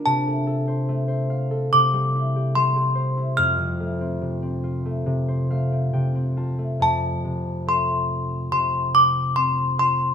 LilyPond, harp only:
<<
  \new Staff \with { instrumentName = "Harp" } { \time 4/4 \key f \major \tempo 4 = 71 r1 | r2 r8 f''8 g''8 a''8 | r1 | }
  \new Staff \with { instrumentName = "Harp" } { \time 4/4 \key f \major c16 a16 a'16 c''16 a16 c''16 f''16 a'16 c16 g16 e'16 g'16 g16 g'16 c''16 e'16 | f,16 c16 a16 c'16 c16 c'16 f'16 a16 c16 c''16 a16 c'16 c16 c'16 f'16 a16 | f,8 c8 a4 c4 c'8 f'8 | }
>>